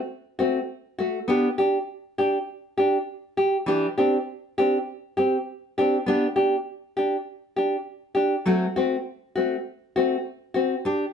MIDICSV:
0, 0, Header, 1, 3, 480
1, 0, Start_track
1, 0, Tempo, 597610
1, 1040, Time_signature, 4, 2, 24, 8
1, 8940, End_track
2, 0, Start_track
2, 0, Title_t, "Nylon-string guitar"
2, 0, Program_c, 0, 24
2, 312, Note_on_c, 0, 66, 69
2, 320, Note_on_c, 0, 60, 61
2, 331, Note_on_c, 0, 57, 51
2, 465, Note_off_c, 0, 66, 0
2, 469, Note_off_c, 0, 60, 0
2, 475, Note_off_c, 0, 57, 0
2, 791, Note_on_c, 0, 66, 65
2, 803, Note_on_c, 0, 57, 56
2, 945, Note_off_c, 0, 66, 0
2, 951, Note_off_c, 0, 57, 0
2, 1026, Note_on_c, 0, 59, 90
2, 1035, Note_on_c, 0, 62, 81
2, 1041, Note_on_c, 0, 67, 88
2, 1182, Note_off_c, 0, 59, 0
2, 1187, Note_off_c, 0, 62, 0
2, 1190, Note_off_c, 0, 67, 0
2, 1270, Note_on_c, 0, 67, 64
2, 1282, Note_on_c, 0, 62, 53
2, 1424, Note_off_c, 0, 67, 0
2, 1430, Note_off_c, 0, 62, 0
2, 1753, Note_on_c, 0, 67, 68
2, 1761, Note_on_c, 0, 62, 52
2, 1906, Note_off_c, 0, 67, 0
2, 1910, Note_off_c, 0, 62, 0
2, 2229, Note_on_c, 0, 67, 60
2, 2244, Note_on_c, 0, 62, 47
2, 2384, Note_off_c, 0, 67, 0
2, 2391, Note_off_c, 0, 62, 0
2, 2709, Note_on_c, 0, 67, 65
2, 2864, Note_off_c, 0, 67, 0
2, 2942, Note_on_c, 0, 52, 79
2, 2953, Note_on_c, 0, 62, 80
2, 2956, Note_on_c, 0, 67, 90
2, 3100, Note_off_c, 0, 52, 0
2, 3106, Note_off_c, 0, 62, 0
2, 3107, Note_off_c, 0, 67, 0
2, 3193, Note_on_c, 0, 67, 64
2, 3200, Note_on_c, 0, 62, 65
2, 3207, Note_on_c, 0, 60, 58
2, 3346, Note_off_c, 0, 67, 0
2, 3349, Note_off_c, 0, 62, 0
2, 3353, Note_off_c, 0, 60, 0
2, 3678, Note_on_c, 0, 67, 65
2, 3688, Note_on_c, 0, 62, 54
2, 3692, Note_on_c, 0, 60, 52
2, 3828, Note_off_c, 0, 67, 0
2, 3834, Note_off_c, 0, 62, 0
2, 3835, Note_off_c, 0, 60, 0
2, 4152, Note_on_c, 0, 67, 61
2, 4169, Note_on_c, 0, 60, 55
2, 4306, Note_off_c, 0, 67, 0
2, 4314, Note_off_c, 0, 60, 0
2, 4641, Note_on_c, 0, 67, 58
2, 4648, Note_on_c, 0, 62, 61
2, 4663, Note_on_c, 0, 60, 50
2, 4790, Note_off_c, 0, 67, 0
2, 4794, Note_off_c, 0, 62, 0
2, 4801, Note_off_c, 0, 60, 0
2, 4871, Note_on_c, 0, 59, 82
2, 4883, Note_on_c, 0, 67, 87
2, 4884, Note_on_c, 0, 62, 91
2, 5025, Note_off_c, 0, 59, 0
2, 5031, Note_off_c, 0, 62, 0
2, 5031, Note_off_c, 0, 67, 0
2, 5107, Note_on_c, 0, 67, 65
2, 5119, Note_on_c, 0, 62, 52
2, 5263, Note_off_c, 0, 67, 0
2, 5269, Note_off_c, 0, 62, 0
2, 5596, Note_on_c, 0, 67, 61
2, 5610, Note_on_c, 0, 62, 51
2, 5748, Note_off_c, 0, 67, 0
2, 5755, Note_off_c, 0, 62, 0
2, 6076, Note_on_c, 0, 67, 60
2, 6088, Note_on_c, 0, 62, 48
2, 6228, Note_off_c, 0, 67, 0
2, 6234, Note_off_c, 0, 62, 0
2, 6543, Note_on_c, 0, 67, 61
2, 6557, Note_on_c, 0, 62, 59
2, 6702, Note_off_c, 0, 67, 0
2, 6709, Note_off_c, 0, 62, 0
2, 6792, Note_on_c, 0, 54, 76
2, 6796, Note_on_c, 0, 57, 91
2, 6802, Note_on_c, 0, 60, 83
2, 6802, Note_on_c, 0, 66, 86
2, 6946, Note_off_c, 0, 54, 0
2, 6948, Note_off_c, 0, 57, 0
2, 6951, Note_off_c, 0, 60, 0
2, 6951, Note_off_c, 0, 66, 0
2, 7037, Note_on_c, 0, 66, 67
2, 7046, Note_on_c, 0, 60, 60
2, 7050, Note_on_c, 0, 57, 51
2, 7189, Note_off_c, 0, 66, 0
2, 7193, Note_off_c, 0, 60, 0
2, 7195, Note_off_c, 0, 57, 0
2, 7514, Note_on_c, 0, 66, 62
2, 7527, Note_on_c, 0, 60, 53
2, 7531, Note_on_c, 0, 57, 54
2, 7667, Note_off_c, 0, 66, 0
2, 7674, Note_off_c, 0, 60, 0
2, 7676, Note_off_c, 0, 57, 0
2, 7999, Note_on_c, 0, 66, 72
2, 8011, Note_on_c, 0, 60, 61
2, 8012, Note_on_c, 0, 57, 54
2, 8150, Note_off_c, 0, 66, 0
2, 8156, Note_off_c, 0, 60, 0
2, 8157, Note_off_c, 0, 57, 0
2, 8468, Note_on_c, 0, 66, 63
2, 8481, Note_on_c, 0, 60, 60
2, 8625, Note_off_c, 0, 66, 0
2, 8631, Note_off_c, 0, 60, 0
2, 8721, Note_on_c, 0, 67, 88
2, 8723, Note_on_c, 0, 62, 90
2, 8871, Note_off_c, 0, 67, 0
2, 8872, Note_off_c, 0, 62, 0
2, 8940, End_track
3, 0, Start_track
3, 0, Title_t, "Muted nylon-string guitar strokes"
3, 2946, Note_on_c, 9, 29, 75
3, 3026, Note_off_c, 9, 29, 0
3, 4160, Note_on_c, 9, 29, 55
3, 4240, Note_off_c, 9, 29, 0
3, 8715, Note_on_c, 9, 29, 89
3, 8796, Note_off_c, 9, 29, 0
3, 8940, End_track
0, 0, End_of_file